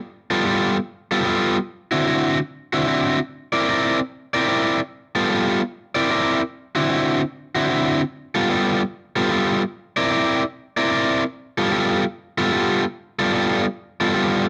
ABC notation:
X:1
M:4/4
L:1/8
Q:"Swing" 1/4=149
K:Gmix
V:1 name="Overdriven electric guitar"
z [G,B,FA] [G,B,FA] z2 [G,B,FA] [G,B,FA] z | z [D,CE^F] [D,CEF] z2 [D,CEF] [D,CEF] z | z [CE_Bd] [CEBd] z2 [CEBd] [CEBd] z | z [G,B,FA] [G,B,FA] z2 [CE_Bd] [CEBd] z |
z [D,CE^F] [D,CEF] z2 [D,CEF] [D,CEF] z | z [G,B,FA] [G,B,FA] z2 [G,B,FA] [G,B,FA] z | z [CE_Bd] [CEBd] z2 [CEBd] [CEBd] z | z [G,B,FA] [G,B,FA] z2 [G,B,FA] [G,B,FA] z |
z [G,B,FA] [G,B,FA] z2 [G,B,FA] [G,B,FA] z |]